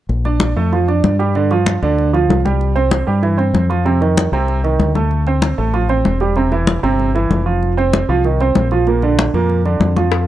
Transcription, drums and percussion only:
0.09 high conga soft
0.25 high conga soft
0.40 high conga medium
0.73 high conga soft
0.88 high conga soft
1.04 high conga medium
1.20 high conga soft
1.35 high conga soft
1.51 high conga soft
1.66 high conga medium
1.83 high conga soft
1.99 high conga soft
2.14 high conga soft
2.30 high conga medium
2.46 high conga medium
2.61 high conga soft
2.76 high conga soft
2.91 high conga medium
3.23 high conga soft
3.39 high conga soft
3.55 high conga medium
3.71 high conga soft
3.86 high conga soft
4.02 high conga soft
4.17 high conga medium
4.33 high conga soft
4.48 high conga soft
4.64 high conga soft
4.80 high conga medium
4.95 high conga medium
5.11 high conga soft
5.27 high conga soft
5.42 high conga medium
5.74 high conga soft
5.89 high conga soft
6.05 high conga medium
6.20 high conga soft
6.36 high conga soft
6.52 high conga soft
6.67 high conga medium
6.84 high conga soft
6.99 high conga soft
7.16 high conga soft
7.31 high conga medium
7.63 high conga soft
7.78 high conga soft
7.93 high conga medium
8.24 high conga soft
8.40 high conga soft
8.55 high conga medium
8.71 high conga soft
8.87 high conga soft
9.02 high conga soft
9.19 high conga medium
9.34 high conga soft
9.49 high conga soft
9.65 high conga soft
9.81 high conga medium
9.97 high conga medium
10.12 high bongo medium
10.12 high conga soft

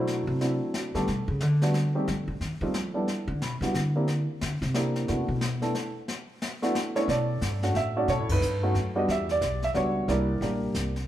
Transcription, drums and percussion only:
0.07 brush sweep medium
0.07 snare soft
0.41 snare soft
0.74 snare medium
0.95 snare soft
1.08 brush sweep medium
1.08 snare soft
1.41 snare medium
1.62 snare soft
1.74 snare soft
2.08 brush sweep soft
2.08 snare soft
2.41 snare soft
2.74 snare medium
3.08 brush sweep medium
3.08 snare soft
3.42 snare medium
3.62 snare soft
3.74 snare soft
4.08 brush sweep medium
4.08 snare medium
4.41 snare medium
4.62 snare soft
4.74 snare medium
4.96 snare soft
5.08 brush sweep medium
5.08 snare soft
5.41 snare medium
5.62 snare soft
5.75 snare soft
6.08 brush sweep soft
6.08 snare medium
6.42 snare medium
6.63 snare soft
6.75 snare medium
6.96 snare soft
7.08 brush sweep soft
7.08 kick soft
7.08 snare soft
7.41 kick soft
7.41 snare medium
7.41 hi-hat pedal medium
7.63 snare soft
7.75 kick soft
7.75 snare soft
8.08 brush sweep medium
8.08 kick soft
8.08 snare soft
8.29 kick medium
8.29 crash medium
8.42 hi-hat pedal medium
8.75 kick soft
8.75 snare soft
9.08 brush sweep soft
9.08 kick soft
9.08 snare soft
9.29 snare soft
9.41 kick soft
9.41 snare medium
9.41 hi-hat pedal soft
9.62 snare soft
9.75 kick soft
9.75 snare soft
10.08 brush sweep soft
10.08 kick soft
10.08 snare soft
10.42 kick soft
10.42 snare soft
10.74 kick soft
10.74 snare medium
10.74 hi-hat pedal medium
10.96 snare soft

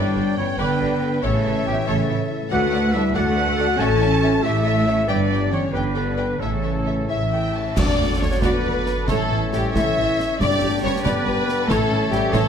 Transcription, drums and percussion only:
7.77 concert bass drum medium
7.77 snare medium
7.77 crash medium
8.42 concert bass drum medium
8.42 snare medium
8.86 snare medium
9.08 concert bass drum medium
9.08 snare medium
9.53 snare medium
9.76 concert bass drum medium
9.76 snare medium
10.20 snare medium
10.41 concert bass drum medium
10.41 snare medium
10.41 crash soft
11.06 concert bass drum medium
11.06 snare medium
11.49 snare medium
11.70 concert bass drum medium
11.70 snare medium
12.12 snare medium
12.33 concert bass drum medium
12.33 snare medium

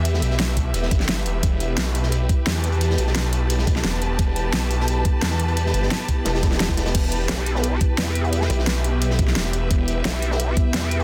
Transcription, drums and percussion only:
0.05 closed hi-hat medium
0.14 snare soft
0.22 closed hi-hat medium
0.30 snare soft
0.40 snare loud
0.40 closed hi-hat medium
0.57 kick medium
0.57 closed hi-hat medium
0.74 closed hi-hat medium
0.83 snare medium
0.91 kick loud
0.91 closed hi-hat medium
1.00 snare soft
1.08 snare loud
1.08 closed hi-hat medium
1.26 closed hi-hat medium
1.43 kick loud
1.43 closed hi-hat medium
1.60 closed hi-hat medium
1.77 snare loud
1.77 closed hi-hat medium
1.86 closed hi-hat soft
1.95 closed hi-hat medium
2.03 snare soft
2.12 closed hi-hat medium
2.29 kick loud
2.29 closed hi-hat medium
2.46 snare loud
2.46 closed hi-hat medium
2.46 open hi-hat medium
2.55 snare soft
2.64 closed hi-hat medium
2.72 closed hi-hat soft
2.81 closed hi-hat medium
2.90 snare soft
2.98 closed hi-hat medium
3.07 snare soft
3.15 snare loud
3.15 closed hi-hat medium
3.33 closed hi-hat medium
3.50 closed hi-hat medium
3.59 snare medium
3.67 kick loud
3.67 closed hi-hat medium
3.76 snare soft
3.84 snare loud
3.84 closed hi-hat medium
4.01 closed hi-hat medium
4.19 kick loud
4.19 closed hi-hat medium
4.36 closed hi-hat medium
4.53 snare loud
4.53 closed hi-hat medium
4.62 closed hi-hat soft
4.71 closed hi-hat medium
4.80 snare soft
4.88 closed hi-hat medium
5.05 kick loud
5.05 closed hi-hat medium
5.22 snare loud
5.22 closed hi-hat medium
5.22 open hi-hat medium
5.32 snare soft
5.39 closed hi-hat medium
5.48 closed hi-hat soft
5.57 closed hi-hat medium
5.66 snare soft
5.74 closed hi-hat medium
5.82 snare soft
5.91 snare loud
5.91 closed hi-hat medium
6.08 kick medium
6.08 closed hi-hat medium
6.25 snare loud
6.25 closed hi-hat medium
6.35 snare medium
6.35 closed hi-hat medium
6.43 kick loud
6.43 snare loud
6.43 closed hi-hat medium
6.52 snare medium
6.52 snare soft
6.52 closed hi-hat medium
6.60 snare loud
6.60 closed hi-hat medium
6.69 kick medium
6.69 snare loud
6.69 closed hi-hat medium
6.77 snare loud
6.77 closed hi-hat medium
6.86 snare loud
6.86 closed hi-hat medium
6.95 kick loud
6.95 closed hi-hat loud
6.95 closed hi-hat medium
6.95 crash medium
7.12 closed hi-hat medium
7.29 snare loud
7.29 closed hi-hat medium
7.39 closed hi-hat soft
7.46 closed hi-hat medium
7.55 snare soft
7.63 closed hi-hat medium
7.80 kick loud
7.80 closed hi-hat medium
7.98 snare loud
7.98 closed hi-hat loud
7.98 open hi-hat medium
8.06 snare soft
8.15 closed hi-hat medium
8.24 closed hi-hat soft
8.33 closed hi-hat medium
8.33 closed hi-hat loud
8.41 snare medium
8.50 closed hi-hat medium
8.59 snare soft
8.67 snare loud
8.67 closed hi-hat medium
8.84 closed hi-hat medium
9.02 closed hi-hat loud
9.02 closed hi-hat medium
9.10 snare medium
9.19 kick loud
9.19 closed hi-hat medium
9.27 snare soft
9.36 snare loud
9.36 closed hi-hat medium
9.36 closed hi-hat loud
9.53 closed hi-hat medium
9.71 kick loud
9.71 closed hi-hat medium
9.88 closed hi-hat medium
10.05 snare loud
10.05 closed hi-hat medium
10.05 closed hi-hat loud
10.13 closed hi-hat soft
10.22 closed hi-hat medium
10.31 snare medium
10.40 closed hi-hat medium
10.56 kick loud
10.56 closed hi-hat medium
10.74 snare loud
10.74 closed hi-hat medium
10.74 open hi-hat medium
10.83 snare soft
10.91 closed hi-hat medium
11.00 closed hi-hat soft

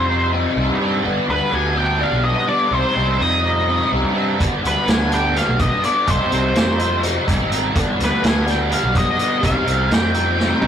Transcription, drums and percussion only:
4.40 kick loud
4.40 closed hi-hat medium
4.65 closed hi-hat medium
4.88 snare medium
4.88 closed hi-hat medium
5.12 closed hi-hat medium
5.36 snare soft
5.36 closed hi-hat medium
5.59 kick medium
5.59 closed hi-hat medium
5.84 closed hi-hat medium
6.07 kick loud
6.07 closed hi-hat medium
6.32 closed hi-hat medium
6.55 snare medium
6.55 closed hi-hat medium
6.79 closed hi-hat medium
7.03 closed hi-hat medium
7.28 kick medium
7.28 closed hi-hat medium
7.52 closed hi-hat medium
7.76 kick loud
7.76 closed hi-hat medium
8.00 snare soft
8.00 closed hi-hat medium
8.24 snare medium
8.24 closed hi-hat medium
8.48 snare soft
8.48 closed hi-hat medium
8.72 closed hi-hat medium
8.95 kick medium
8.95 closed hi-hat medium
9.19 closed hi-hat medium
9.43 kick medium
9.43 closed hi-hat medium
9.67 closed hi-hat medium
9.91 snare medium
9.91 closed hi-hat medium
10.14 closed hi-hat medium
10.40 snare medium
10.62 high tom medium

